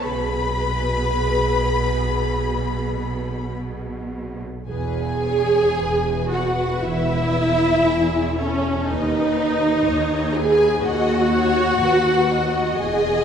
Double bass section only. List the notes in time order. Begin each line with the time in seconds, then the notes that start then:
0.02 B1
4.69 E1
5.78 E1
6.83 E1
7.87 E1
8.89 D#2
9.87 D#2
10.84 D#2
11.80 D#2
12.79 E1